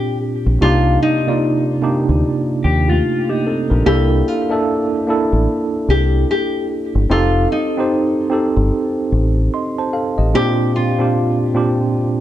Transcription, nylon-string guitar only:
0.00 0.17 G4 medium
0.62 0.98 F4 loud
1.02 1.64 D#4 medium
3.86 4.28 G4 loud
4.28 4.89 F4 medium
5.90 6.26 G4 medium
6.31 6.66 G4 medium
7.11 7.47 F4 loud
7.52 8.13 D#4 medium
10.35 10.71 G4 loud
10.76 11.37 F4 medium

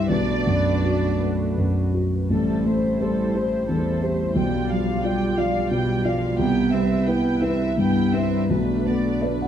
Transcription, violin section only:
0.00 0.10 E5 medium
0.11 1.19 D5 medium
2.30 2.63 A4 soft
2.66 3.01 C5 soft
3.00 3.35 A4 soft
3.35 3.69 C5 soft
3.68 4.00 A4 soft
4.02 4.36 C5 soft
4.36 4.68 G5 soft
4.70 5.04 F5 soft
5.03 5.37 G5 soft
5.37 5.71 F5 soft
5.71 6.02 G5 soft
6.05 6.39 F5 soft
6.38 6.70 G5 medium
6.72 7.07 E5 soft
7.07 7.42 G5 soft
7.42 7.77 E5 soft
7.78 8.11 G5 soft
8.13 8.49 E5 soft
8.49 8.83 B4 soft
8.86 9.22 D5 soft
9.23 9.48 B4 soft

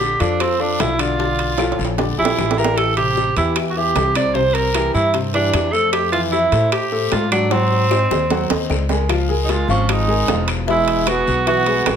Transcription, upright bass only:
0.00 0.14 A#1 medium
0.20 0.76 F2 medium
0.80 1.73 B1 medium
1.79 2.15 A#1 medium
2.18 2.36 A#1 medium
2.38 3.31 A1 medium
3.36 3.92 E2 medium
3.95 4.88 C2 medium
4.94 5.50 G2 medium
5.53 6.46 F2 medium
6.52 7.08 A2 medium
7.12 8.05 G#2 medium
8.11 8.48 D#2 medium
8.50 8.69 D#2 medium
8.70 9.63 C#2 medium
9.68 10.24 G#1 medium
10.28 11.21 E1 medium
11.27 11.83 B1 medium
11.86 11.96 A1 medium

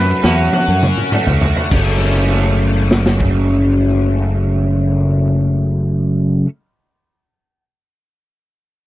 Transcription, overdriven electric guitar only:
0.00 1.13 F#2 medium
0.00 0.53 A3 medium
0.00 0.22 C#4 medium
0.00 0.53 F#4 medium
0.23 0.82 C#4 medium
0.54 1.42 F#4 medium
0.83 1.72 C#4 medium
1.13 1.72 A3 medium
1.43 1.72 F#4 medium
1.71 6.45 F#2 medium
1.71 6.46 C#3 medium
1.71 6.47 F#3 medium
1.71 6.48 A3 medium
1.71 6.48 C#4 medium
1.71 6.49 A4 loud

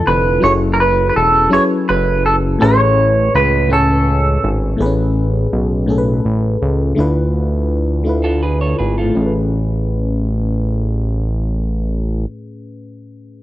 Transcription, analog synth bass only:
0.08 0.39 F1 loud
0.44 1.11 F#1 loud
1.16 1.48 E1 loud
1.89 2.57 F#1 medium
2.62 3.30 A1 loud
3.35 4.38 C#2 loud
4.44 4.75 G#1 medium
4.80 5.48 A1 loud
5.53 6.20 B1 medium
6.25 6.57 A1 medium
6.62 6.94 C#2 medium
6.98 8.75 D2 medium
8.80 9.12 G#1 medium
9.16 12.25 A1 medium

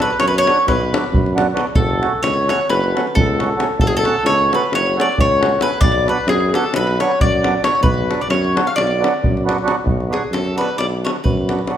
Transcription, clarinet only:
0.01 0.19 B4 medium
0.21 0.28 C#5 medium
0.28 0.36 B4 medium
0.38 0.65 C#5 medium
0.68 1.33 B4 medium
1.76 2.19 A4 medium
2.24 2.47 C#5 medium
2.51 2.68 C#5 medium
2.71 3.13 B4 medium
3.20 3.76 A4 medium
3.82 3.87 A4 medium
3.89 3.95 G#4 medium
3.99 4.24 A4 loud
4.28 4.51 C#5 medium
4.54 4.71 B4 medium
4.75 4.97 C#5 medium
5.00 5.17 D5 medium
5.21 5.59 C#5 medium
5.63 5.80 B4 medium
5.83 6.06 D5 loud
6.09 6.27 B4 medium
6.29 6.52 G#4 loud
6.54 6.72 A4 medium
6.74 6.98 B4 medium
7.02 7.20 C#5 medium
7.22 7.61 D5 medium
7.65 7.82 C#5 medium
7.83 8.20 B4 medium
8.23 8.28 D5 medium
8.29 8.66 C#5 medium
8.70 8.75 F5 medium
8.76 9.42 D5 medium

